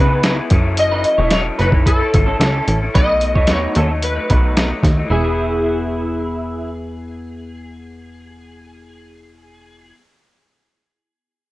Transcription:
Already playing: C#2 C#3 E3 B3 C#4 G#4 B4
0.00 B3 D#4 E4
0.11 B3 E4 G#4
0.23 C#3 B3 E4 G#4, snare, closed hi-hat
0.36 B3 E4 G#4
0.50 F#1 F#3 C#4 E4 A4, kick, closed hi-hat
0.77 D#5, closed hi-hat
0.92 D#4 B4
1.04 closed hi-hat
1.18 E1 C#4 E4 A4 C#5
1.31 F#3 C#4 E4 A4 C#5, snare, closed hi-hat
1.59 F#1 F#3 C#4 D#4 E4 A4 B4, closed hi-hat
1.72 C#4 E4 A4, kick
1.86 E4 A4 B4, kick, closed hi-hat
1.99 C#4 E4 A4
2.13 G#1 F#3 C#4 E4 A4, kick, closed hi-hat
2.26 C#4 E4 A4
2.40 C#2 F#3 C#4 E4 A4, snare, closed hi-hat
2.54 C#4 E4 A4
2.68 A1, closed hi-hat
2.82 C#4 E4 A4
2.94 B1 B2 F#3 A3 D#4 B4 D#5, kick, closed hi-hat
3.21 closed hi-hat
3.35 D#2 F#3 A3 D#4 E4 C#5, kick
3.47 B2 F#3 A3 D#4 B4 C#5, snare, closed hi-hat
3.51 D#4
3.75 D#2 B2 F#3 A3 C#4 D#4 A4, closed hi-hat
3.90 F#3 A3 D#4
4.03 B4, closed hi-hat
4.16 F#3 A3 D#4
4.29 B1 B2 F#3 A3 D#4 B4, kick, closed hi-hat
4.57 B2 F#3 A3 D#4, snare, closed hi-hat
4.70 F#3 A3 D#4
4.83 D#2, kick, snare, closed hi-hat
4.98 F#3 A3 D#4
5.06 E3
5.10 E1 B3 E4 G#4
5.24 G#4

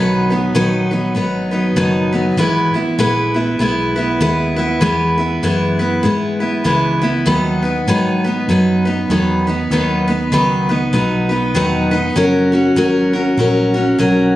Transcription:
Already playing: B1 B2 D#3 F#3 B3 D#4 B4
0.30 F#3 B3 D#4 B4
0.54 A#1 D#3 F#3 B3 D#4 B4
0.91 F#3 B3 D#4 B4
1.15 G#1 F#3 B3 D#4 B4
1.51 F#3 B3 D#4 B4
1.76 F#1 B2 D#3 F#3 B3 D#4 B4
2.13 F#3 B3 D#4 B4
2.37 G#1 E3 G#3 B3 E4 B4
2.74 B3 E4 B4, muted fingered electric bass stroke
2.98 A#1 E3 G#3 B3 E4 B4
3.34 B3 E4 B4
3.59 B1 G#3 B3 E4 B4
3.96 B3 E4 B4
4.21 D#2 G#3 B3 E4 B4
4.56 B3 E4 B4
4.81 E2 E3 G#3 B3 E4 B4
5.18 B3 E4 B4
5.43 F#2 E3 G#3 B3 E4 B4
5.79 B3 E4 B4
6.03 G#2 G#3 B3 E4 B4
6.40 B3 E4 B4
6.64 C#2 E3 G#3 B3 E4 B4
7.02 B3 E4 B4
7.26 D#2 D#3 F#3 B3 D#4 B4
7.62 B3 D#4 B4
7.87 G#2 D#3 F#3 B3 D#4 B4
8.24 B3 D#4 B4
8.48 F#2 F#3 B3 D#4 B4
8.85 B3 D#4 B4
9.09 E2 D#3 F#3 B3 D#4 B4
9.47 B3 D#4 B4
9.70 D#2 D#3 F#3 B3 D#4 B4
10.08 B3 D#4 B4
10.32 C#2 D#3 F#3 B3 D#4 B4
10.69 B3 D#4 B4
10.93 B1 F#3 B3 D#4 B4
11.29 B3 D#4 B4
11.54 E1 D#3 F#3 B3 D#4 B4
11.91 B3 D#4 B4
12.15 F#1 F#3 C#4 F#4 A#4
12.52 C#4 F#4 A#4
12.76 G#1 F#3 C#4 F#4 A#4
13.13 C#4 F#4 A#4
13.37 A#1 F#3 C#4 F#4 A#4
13.74 C#4 F#4 A#4
13.99 B1 F#3 C#4 F#4 A#4

